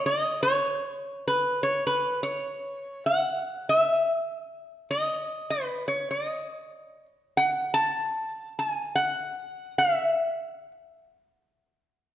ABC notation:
X:1
M:4/4
L:1/8
Q:"Swing" 1/4=99
K:E
V:1 name="Resonator guitar played with a steel bar"
d c3 B c B c- | c2 f2 e4 | d2 B c d3 z | f a3 g f3 |
e3 z4 z |]